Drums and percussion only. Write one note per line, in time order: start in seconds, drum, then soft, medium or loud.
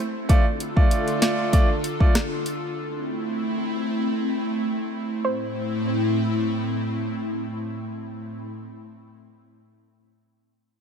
0.29 kick loud
0.29 closed hi-hat medium
0.60 closed hi-hat medium
0.77 kick loud
0.91 closed hi-hat medium
1.08 closed hi-hat medium
1.22 snare loud
1.22 closed hi-hat medium
1.53 kick medium
1.53 closed hi-hat medium
1.84 closed hi-hat medium
2.00 kick medium
2.15 cross-stick loud
2.15 snare loud
2.15 closed hi-hat medium
2.46 closed hi-hat medium